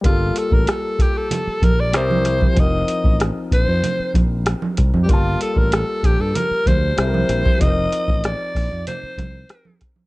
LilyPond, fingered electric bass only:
\new Staff \with { instrumentName = "Fingered electric bass" } { \clef bass \time 4/4 \key g \minor \tempo 4 = 95 g,,8 r16 a,,16 r4. bes,,8 c,4 | f,,8 r16 a,,8 r16 bes,,16 f,16 r8 bes,,8. r16 c,16 f,16 | g,,8 r16 a,,8 r16 bes,,16 g,16 r8 d,8 c,8 bes,,16 r16 | f,,8 r16 a,,8 r16 bes,,16 f,16 r8 c,8 r4 | }